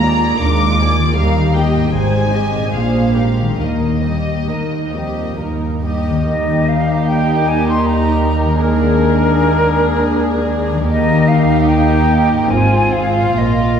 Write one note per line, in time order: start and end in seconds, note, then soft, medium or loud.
0.00 0.32 D#2 medium
0.00 0.97 D#3 soft
0.00 1.13 G#3 soft
0.00 0.41 A#3 soft
0.00 1.16 D4 soft
0.00 0.41 F4 soft
0.00 1.11 A#4 soft
0.00 0.42 D5 soft
0.00 0.40 A#5 medium
0.04 0.42 G#4 soft
0.40 1.08 D#2 medium
0.40 1.08 D#2 soft
0.40 0.77 G#3 soft
0.40 0.77 D4 soft
0.40 0.77 F4 soft
0.40 0.77 A#4 soft
0.40 1.17 D6 medium
0.79 1.17 A#3 soft
0.79 1.17 F4 soft
0.79 1.18 G#4 soft
0.79 1.18 D5 soft
0.98 1.87 D#3 soft
1.03 1.78 G3 soft
1.07 1.82 D#4 soft
1.12 1.94 A#4 soft
1.16 1.84 D#2 medium
1.16 1.84 D#2 soft
1.16 1.52 G3 soft
1.16 1.52 D#4 soft
1.16 1.53 A#4 soft
1.16 1.54 F5 medium
1.54 1.94 A#3 soft
1.54 1.93 G4 soft
1.54 1.94 G4 soft
1.54 1.93 D#5 soft
1.54 1.93 G5 medium
1.75 2.66 G#2 soft
1.79 2.57 G3 soft
1.83 2.70 D#4 soft
1.88 2.66 C5 soft
1.93 2.62 G#1 soft
1.93 2.63 G#2 soft
1.93 2.29 G3 soft
1.93 2.29 D#4 soft
1.93 2.29 G#4 soft
1.93 2.29 C5 soft
1.93 2.72 G#5 medium
2.32 2.72 G#3 soft
2.32 2.72 C4 soft
2.32 2.72 G4 soft
2.32 2.72 D#5 soft
2.53 3.53 A#2 soft
2.58 3.44 G3 soft
2.62 3.58 D4 soft
2.67 3.60 C5 soft
2.72 3.48 A#1 soft
2.72 3.49 A#2 soft
2.72 3.12 G3 soft
2.72 3.12 D4 soft
2.72 3.12 G#4 soft
2.72 3.12 C5 soft
2.72 3.59 F5 medium
3.15 3.59 G#3 soft
3.15 3.59 C4 soft
3.15 3.59 G4 soft
3.15 3.58 A#4 soft
3.41 6.09 D#3 soft
3.45 6.13 G3 soft
3.49 6.18 D#4 soft
3.54 6.22 A#4 soft
3.58 4.38 D#2 soft
3.58 4.39 D#2 soft
3.58 4.01 A#3 soft
3.58 4.01 D#4 soft
3.58 4.01 A#4 soft
3.58 5.39 D#5 soft
4.04 4.49 G3 soft
4.04 4.48 A#3 soft
4.04 4.49 G4 soft
4.04 4.49 D#5 soft
4.49 5.28 D#2 soft
4.49 4.91 D#2 soft
4.49 4.93 A#3 soft
4.49 4.94 D#4 soft
4.49 4.94 A#4 soft
4.93 5.39 F2 soft
4.93 5.39 G3 soft
4.93 5.38 A#3 soft
4.93 5.38 G4 soft
4.93 5.38 D#5 soft
5.38 6.18 D#2 soft
5.38 6.29 G2 soft
5.38 5.82 A#3 soft
5.38 5.82 D#4 soft
5.38 5.81 A#4 soft
5.85 6.29 G3 soft
5.85 6.29 A#3 soft
5.85 6.29 G4 soft
5.85 6.29 D#5 soft
6.10 8.44 D#3 soft
6.14 8.59 G3 soft
6.19 8.61 D#4 soft
6.23 8.57 A#4 soft
6.28 10.86 D#2 medium
6.28 10.87 D#2 soft
6.28 8.58 G3 soft
6.28 9.33 D#4 soft
6.28 8.59 D#4 soft
6.28 8.59 G4 medium
6.28 10.87 A#4 soft
6.28 6.70 D#5 medium
6.69 7.07 F5 medium
7.08 7.50 G5 medium
7.48 7.67 G#5 medium
7.69 7.88 C6 medium
7.87 8.63 A#5 medium
8.45 10.71 D#3 soft
8.49 10.87 G#3 soft
8.54 10.89 D4 soft
8.58 10.90 G#3 soft
8.58 10.86 G#4 medium
8.58 10.84 A#4 soft
8.58 10.51 A#4 medium
8.64 10.87 D4 medium
9.36 10.90 D4 medium
10.72 12.45 D#3 medium
10.76 12.47 G3 soft
10.81 12.49 D#4 soft
10.85 12.46 A#3 medium
10.85 12.50 D#4 medium
10.85 12.51 A#4 soft
10.90 12.47 D#2 medium
10.90 12.51 D#4 medium
10.90 12.47 G4 medium
10.90 12.47 A#4 medium
10.90 11.30 D#5 medium
11.28 11.70 F5 medium
11.69 12.51 G5 medium
12.32 13.33 G#2 soft
12.37 13.35 C4 soft
12.41 13.28 F4 soft
12.45 13.39 G#4 soft
12.50 13.38 G#1 medium
12.50 13.38 G#2 soft
12.50 13.38 C4 medium
12.50 13.23 C4 soft
12.50 13.80 F4 medium
12.50 13.38 G#4 medium
12.50 12.94 G#5 medium
12.93 13.40 F5 medium
13.20 13.80 A#2 soft
13.25 13.80 A#3 soft
13.29 13.80 F4 soft
13.38 13.80 A#1 medium
13.38 13.80 A#2 soft
13.38 13.80 A#3 soft
13.38 13.80 F4 soft
13.38 13.80 D#5 medium